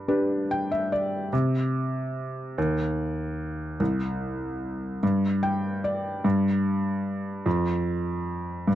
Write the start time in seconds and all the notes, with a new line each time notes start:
Already playing: G2
0.08 D4 G4 B4
0.51 G5
0.72 E5
0.92 D5
1.33 C3
2.58 D#2
3.80 C2
5.03 G2
5.43 G5
5.84 D5
6.24 G2
7.46 F2
8.68 G2